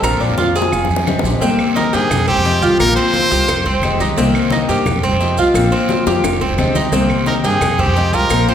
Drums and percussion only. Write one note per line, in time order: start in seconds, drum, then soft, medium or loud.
0.03 high bongo medium
0.03 high conga soft
0.03 long guiro medium
0.03 claves medium
0.03 maracas loud
0.20 high bongo soft
0.20 high conga soft
0.20 maracas soft
0.38 high bongo medium
0.38 high conga loud
0.38 short guiro medium
0.38 maracas soft
0.55 high conga soft
0.55 short guiro medium
0.55 maracas medium
0.62 high bongo medium
0.72 high conga soft
0.72 long guiro medium
0.72 claves medium
0.72 maracas medium
0.85 low bongo medium
0.90 high conga soft
0.90 maracas soft
0.96 low bongo loud
1.07 low bongo medium
1.07 high conga medium
1.07 short guiro medium
1.07 claves medium
1.07 maracas soft
1.19 low bongo loud
1.24 high conga medium
1.24 short guiro medium
1.24 maracas medium
1.30 low bongo medium
1.42 cowbell loud
1.42 high conga soft
1.42 long guiro medium
1.42 maracas loud
1.59 high conga soft
1.59 claves medium
1.59 maracas soft
1.76 cowbell medium
1.76 high conga loud
1.76 short guiro medium
1.76 maracas soft
1.94 cowbell medium
1.94 high conga soft
1.94 short guiro medium
1.94 maracas medium
2.11 cowbell loud
2.11 high conga soft
2.11 low conga medium
2.11 long guiro medium
2.11 claves medium
2.11 maracas medium
2.28 high conga soft
2.28 maracas soft
2.45 cowbell medium
2.45 high conga soft
2.45 short guiro medium
2.45 maracas soft
2.62 high conga medium
2.62 short guiro medium
2.62 maracas medium
2.79 cowbell loud
2.79 high conga soft
2.79 long guiro medium
2.79 claves medium
2.79 maracas loud
2.97 high conga soft
2.97 maracas soft
3.14 cowbell medium
3.14 high conga medium
3.14 short guiro medium
3.14 maracas soft
3.31 cowbell medium
3.31 high conga soft
3.31 short guiro medium
3.31 maracas medium
3.48 cowbell loud
3.48 high conga soft
3.48 long guiro medium
3.48 claves medium
3.48 maracas medium
3.65 high conga soft
3.65 maracas soft
3.82 cowbell medium
3.82 high conga medium
3.82 short guiro medium
3.82 claves medium
3.82 maracas soft
3.99 high conga medium
3.99 short guiro medium
3.99 maracas medium
4.17 cowbell loud
4.17 high conga soft
4.17 long guiro medium
4.17 maracas loud
4.34 high conga soft
4.34 claves medium
4.34 maracas soft
4.50 cowbell medium
4.50 high conga loud
4.50 short guiro medium
4.50 maracas soft
4.68 cowbell medium
4.68 high conga soft
4.68 short guiro medium
4.68 maracas medium
4.86 cowbell loud
4.86 high conga soft
4.86 low conga medium
4.86 long guiro medium
4.86 claves medium
4.86 maracas medium
5.03 high conga soft
5.03 maracas soft
5.20 cowbell medium
5.20 high conga soft
5.20 short guiro medium
5.20 maracas soft
5.37 short guiro medium
5.37 maracas medium
5.55 cowbell loud
5.55 high conga soft
5.55 long guiro medium
5.55 claves medium
5.55 maracas loud
5.72 maracas soft
5.89 cowbell medium
5.89 high bongo medium
5.89 high conga medium
5.89 short guiro medium
5.89 maracas soft
6.07 cowbell medium
6.07 high bongo loud
6.07 high conga soft
6.07 short guiro medium
6.07 maracas medium
6.23 cowbell loud
6.23 low bongo medium
6.23 high conga soft
6.23 long guiro medium
6.23 claves medium
6.23 maracas medium
6.41 low bongo medium
6.41 high conga soft
6.41 maracas soft
6.58 cowbell medium
6.58 high conga medium
6.58 short guiro medium
6.58 claves medium
6.58 maracas soft
6.75 low bongo medium
6.75 high conga medium
6.75 short guiro medium
6.75 maracas medium
6.92 cowbell loud
6.92 high conga soft
6.92 long guiro medium
6.92 maracas loud
7.10 high conga soft
7.10 claves medium
7.10 maracas soft
7.26 cowbell medium
7.26 high conga medium
7.26 short guiro medium
7.26 maracas soft
7.44 cowbell medium
7.44 high conga soft
7.44 short guiro medium
7.44 maracas medium
7.61 cowbell loud
7.61 high conga soft
7.61 low conga medium
7.61 long guiro medium
7.61 claves medium
7.61 maracas medium
7.78 high conga soft
7.78 low conga medium
7.78 maracas soft
7.96 cowbell medium
7.96 high conga soft
7.96 short guiro medium
7.96 maracas soft
8.13 short guiro medium
8.13 maracas medium
8.30 cowbell loud
8.30 high conga soft
8.30 long guiro medium
8.30 claves medium
8.30 maracas loud
8.48 high conga soft
8.48 maracas soft